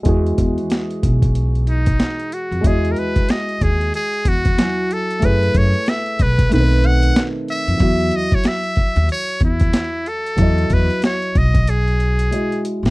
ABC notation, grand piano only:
X:1
M:4/4
L:1/8
Q:"Swing 16ths" 1/4=93
K:E
V:1 name="Grand piano"
[E,G,FG]8 | [G,EFd]6 [F,EFg]2 | [A,EGB]4 [D,A,=C^AB]4 | [F,EFe]8 |
[F,EFd]6 [G,EFd]2 |]